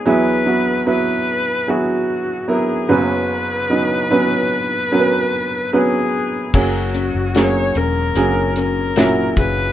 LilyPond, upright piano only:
<<
  \new Staff \with { instrumentName = "Upright piano" } { \time 4/4 \key fis \mixolydian \tempo 4 = 74 <fis b e' gis'>8 <fis b e' fis'>8 <fis b e' b'>4 <fis b e' gis'>4 <fis b e' ais'>8 <fis b cis' b'>8~ | <fis b cis' b'>8 <fis b cis' dis'>8 <fis b cis' b'>4 <fis b cis' ais' b'>4 <fis b cis' b'>4 | <fis ais cis' gis'>4 <fis ais cis' gis'>4 <fis ais cis' gis'>4 <ais, fis cis' e'>4 | }
  \new Staff \with { instrumentName = "Upright piano" } { \clef bass \time 4/4 \key fis \mixolydian e,2.~ e,8 <fis,, fis,>8~ | <fis,, fis,>2.~ <fis,, fis,>8 r8 | r1 | }
>>